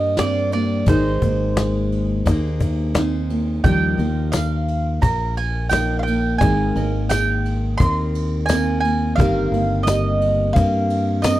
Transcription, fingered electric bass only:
0.00 0.83 G2 medium
0.87 1.20 G#1 loud
1.21 2.21 G#1 medium
2.26 3.60 D#2 medium
3.64 3.97 D#2 medium
3.98 4.98 D#2 medium
5.03 6.37 A#1 medium
6.41 6.74 G#1 medium
6.75 7.75 G#1 loud
7.80 9.14 D#2 medium
9.18 9.51 G1 loud
9.52 10.51 G1 loud
10.56 11.40 G2 medium

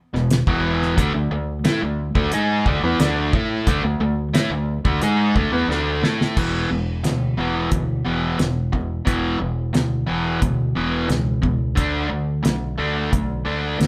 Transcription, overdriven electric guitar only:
0.13 0.41 E2 medium
0.13 0.41 B2 medium
0.47 0.97 E2 loud
0.47 0.97 B2 medium
0.47 0.97 E3 loud
0.97 1.13 D3 medium
0.97 1.13 A3 loud
1.14 1.30 D3 medium
1.14 1.30 A3 medium
1.31 1.58 D3 medium
1.31 1.58 A3 medium
1.64 1.81 A3 loud
1.64 1.81 E4 loud
1.82 2.09 D3 medium
1.82 2.09 A3 medium
2.15 2.31 D3 medium
2.15 2.32 A3 medium
2.33 2.65 G#3 medium
2.33 2.66 D#4 loud
2.33 2.66 G#4 loud
2.67 2.82 D3 loud
2.67 2.83 A3 medium
2.84 2.99 E3 medium
2.84 3.00 B3 medium
3.01 3.33 D3 medium
3.01 3.33 A3 loud
3.01 3.33 D4 medium
3.34 3.67 A3 medium
3.34 3.67 E4 medium
3.34 3.67 A4 loud
3.67 3.83 D3 loud
3.67 3.83 A3 loud
3.84 3.99 D3 medium
3.84 3.99 A3 medium
4.00 4.28 D3 medium
4.00 4.28 A3 medium
4.34 4.50 A3 medium
4.34 4.50 E4 loud
4.51 4.78 D3 medium
4.51 4.78 A3 medium
4.85 5.01 D3 medium
4.85 5.01 A3 medium
5.02 5.35 G#3 medium
5.02 5.35 D#4 medium
5.02 5.35 G#4 loud
5.36 5.51 D3 medium
5.36 5.52 A3 loud
5.53 5.68 E3 medium
5.53 5.69 B3 medium
5.70 6.03 D3 medium
5.70 6.02 A3 medium
5.70 6.03 D4 medium
6.04 6.36 A3 medium
6.04 6.36 E4 medium
6.04 6.37 A4 medium
6.37 6.69 E2 medium
6.37 6.69 B2 medium
6.37 6.69 E3 medium
6.70 7.01 E2 medium
6.70 7.01 B2 medium
7.04 7.34 E2 medium
7.04 7.34 B2 medium
7.37 7.70 E2 medium
7.37 7.70 B2 medium
7.37 7.70 E3 medium
7.71 8.02 E2 medium
7.71 8.02 B2 medium
8.05 8.37 E2 medium
8.05 8.37 B2 medium
8.05 8.38 E3 medium
8.39 8.70 E2 medium
8.39 8.70 B2 medium
8.73 9.03 E2 medium
8.73 9.04 B2 medium
9.06 9.38 E2 medium
9.06 9.38 B2 medium
9.06 9.39 E3 loud
9.40 9.71 E2 medium
9.40 9.71 B2 medium
9.74 10.05 E2 medium
9.74 10.05 B2 medium
10.07 10.39 E2 medium
10.07 10.40 B2 medium
10.07 10.40 E3 medium
10.41 10.72 E2 medium
10.41 10.73 B2 medium
10.75 11.08 E2 medium
10.75 11.08 B2 medium
10.75 11.08 E3 medium
11.09 11.40 E2 medium
11.09 11.40 B2 medium
11.42 11.73 E2 medium
11.42 11.74 B2 medium
11.75 12.08 D3 medium
11.75 12.09 A3 medium
11.75 12.09 D4 medium
12.10 12.41 D3 medium
12.10 12.41 A3 medium
12.43 12.75 D3 medium
12.43 12.75 A3 medium
12.78 13.10 D3 medium
12.78 13.10 A3 medium
12.78 13.11 D4 medium
13.12 13.43 D3 medium
13.12 13.43 A3 medium
13.45 13.78 D3 medium
13.45 13.78 A3 medium
13.45 13.78 D4 medium
13.79 13.87 D3 medium
13.79 13.87 A3 medium

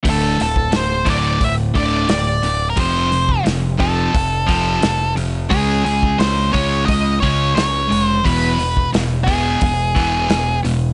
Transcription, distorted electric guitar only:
0.05 0.37 D2 medium
0.05 0.37 A2 medium
0.05 0.37 D3 medium
0.39 0.69 D2 medium
0.39 0.70 A2 medium
0.73 1.04 D2 medium
0.73 1.04 A2 medium
1.07 1.39 D2 medium
1.07 1.39 A2 medium
1.07 1.39 D3 medium
1.41 1.72 D2 medium
1.41 1.72 A2 medium
1.75 2.07 D2 medium
1.75 2.07 A2 medium
1.75 2.08 D3 medium
2.11 2.41 D2 medium
2.11 2.41 A2 medium
2.43 2.74 D2 medium
2.43 2.75 A2 medium
2.76 3.09 F2 medium
2.76 3.10 C3 medium
2.76 3.10 F3 medium
3.11 3.43 F2 medium
3.11 3.43 C3 medium
3.45 3.76 F2 medium
3.45 3.76 C3 medium
3.77 4.11 F2 medium
3.77 4.11 C3 medium
3.77 4.12 F3 medium
4.12 4.44 F2 medium
4.12 4.45 C3 medium
4.47 4.79 F2 medium
4.47 4.80 C3 medium
4.47 4.81 F3 loud
4.81 5.13 F2 medium
4.81 5.13 C3 medium
5.16 5.48 F2 medium
5.16 5.48 C3 medium
5.50 5.83 C#3 medium
5.50 5.83 G#3 medium
5.50 5.83 C#4 medium
5.85 6.16 C#3 medium
5.85 6.16 G#3 medium
6.18 6.50 C#3 medium
6.18 6.50 G#3 medium
6.52 6.85 C#3 medium
6.52 6.85 G#3 medium
6.52 6.86 C#4 medium
6.87 7.18 C#3 medium
6.87 7.18 G#3 medium
7.22 7.54 C#3 medium
7.22 7.55 G#3 medium
7.22 7.55 C#4 medium
7.56 7.87 C#3 medium
7.56 7.87 G#3 medium
7.89 8.21 C#3 medium
7.89 8.21 G#3 medium
8.24 8.57 E2 medium
8.24 8.57 B2 medium
8.24 8.57 E3 medium
8.58 8.90 E2 medium
8.58 8.90 B2 medium
8.94 9.25 E2 medium
8.94 9.24 B2 medium
9.27 9.59 E2 medium
9.27 9.60 B2 medium
9.27 9.60 E3 medium
9.62 9.93 E2 medium
9.62 9.93 B2 medium
9.95 10.28 E2 medium
9.95 10.28 B2 medium
9.95 10.28 E3 medium
10.29 10.60 E2 medium
10.29 10.61 B2 medium
10.64 10.93 E2 medium
10.64 10.93 B2 medium

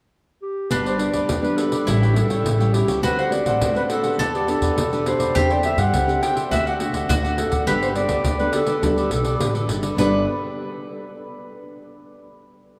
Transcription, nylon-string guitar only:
0.70 1.26 G2 medium
0.70 0.95 G3 medium
0.70 0.95 B3 medium
0.70 0.95 D4 medium
0.98 1.38 G3 medium
0.98 1.38 B3 soft
0.98 1.38 D4 medium
1.27 1.83 D3 medium
1.41 1.81 G3 medium
1.41 1.82 B3 medium
1.41 1.82 D4 medium
1.85 2.41 A2 medium
1.85 2.03 G3 medium
1.85 2.03 C#4 medium
1.85 2.04 E4 medium
2.13 2.42 G3 soft
2.13 2.42 C#4 medium
2.13 2.42 E4 medium
2.43 2.99 E3 medium
2.58 2.98 G3 medium
2.58 2.98 C#4 medium
2.58 2.98 E4 medium
3.02 3.58 D3 medium
3.02 3.20 A3 medium
3.02 3.20 C4 medium
3.02 3.20 F#4 medium
3.29 3.70 A3 soft
3.29 3.70 C4 soft
3.29 3.70 F#4 medium
3.59 4.16 A2 medium
3.75 4.00 A3 medium
3.75 4.00 C4 medium
3.75 4.00 F#4 medium
4.03 4.43 B3 medium
4.03 4.43 D4 medium
4.03 4.44 G4 medium
4.19 4.74 E3 medium
4.47 4.75 B3 medium
4.47 4.75 D4 medium
4.47 4.75 G4 medium
4.76 5.32 B2 medium
4.91 5.31 B3 medium
4.91 5.31 D4 medium
4.91 5.31 G4 medium
5.35 5.90 E3 medium
5.35 5.60 C4 medium
5.35 5.60 D4 medium
5.35 5.60 G4 medium
5.63 5.91 C4 soft
5.63 5.91 D4 medium
5.63 5.92 G4 medium
5.93 6.48 E3 medium
6.07 6.46 C4 medium
6.07 6.47 D4 medium
6.07 6.47 G4 medium
6.50 7.06 D3 medium
6.50 6.75 A3 medium
6.50 6.75 D4 medium
6.50 6.76 F#4 medium
6.80 7.19 A3 medium
6.80 7.19 D4 medium
6.80 7.19 F#4 medium
7.09 7.64 A2 soft
7.24 7.62 A3 medium
7.24 7.63 D4 medium
7.24 7.63 F#4 medium
7.66 8.22 G3 medium
7.66 7.91 B3 medium
7.66 7.91 D4 medium
7.66 7.92 A4 medium
7.94 8.22 B3 medium
7.94 8.23 D4 medium
7.94 8.23 A4 soft
8.23 8.79 D3 medium
8.40 8.64 B3 medium
8.40 8.64 D4 medium
8.40 8.64 A4 medium
8.66 8.77 B3 medium
8.66 8.77 D4 medium
8.66 8.77 A4 medium
8.82 9.37 G3 medium
8.82 9.07 B3 medium
8.82 9.07 D4 medium
8.82 9.07 A4 medium
9.10 9.50 B3 medium
9.10 9.50 D4 soft
9.10 9.50 A4 medium
9.39 9.95 D3 medium
9.54 9.93 B3 medium
9.54 9.93 D4 medium
9.54 9.93 A4 medium
9.96 10.77 G3 medium
9.96 10.77 B3 medium
9.96 10.77 D4 medium
9.96 10.77 A4 medium

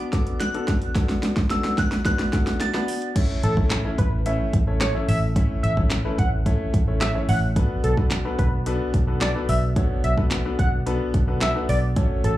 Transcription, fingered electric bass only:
3.44 3.84 A1 loud
3.98 4.39 A1 medium
4.54 4.94 A1 medium
5.08 5.49 A1 medium
5.63 6.04 A1 loud
6.18 6.59 A1 medium
6.74 7.15 A1 medium
7.29 7.70 A1 loud
7.84 8.25 B1 medium
8.39 8.80 B1 medium
8.94 9.35 B1 medium
9.49 9.90 B1 medium
10.04 10.45 B1 loud
10.59 11.00 B1 medium
11.14 11.55 B1 medium
11.69 12.10 B1 medium
12.24 12.38 A1 loud

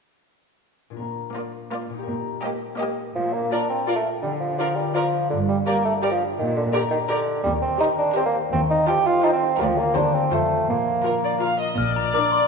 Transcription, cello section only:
1.00 1.29 A#2 soft
2.07 2.36 A#2 soft
3.17 3.46 A#2 soft
4.23 4.53 D3 soft
5.31 5.61 G2 soft
6.39 6.68 A#2 soft
7.46 7.74 D#2 medium
8.53 8.81 D#2 medium
9.60 9.89 D2 medium
9.97 10.25 D#2 medium
10.32 10.61 F2 medium
10.69 10.98 A#2 medium
11.79 12.07 A#2 soft

